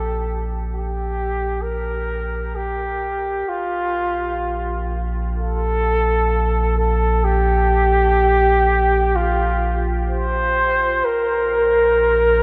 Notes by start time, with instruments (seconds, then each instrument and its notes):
Already playing: sub bass A#1, flugelhorn A4
0.69 flugelhorn G4
1.62 flugelhorn A#4
2.55 flugelhorn G4
3.48 sub bass A#1, flugelhorn F4
5.37 flugelhorn A4
6.78 flugelhorn A4
7.24 flugelhorn G4
9.16 flugelhorn F4
10.10 flugelhorn C5
11.05 sub bass A#1, flugelhorn A#4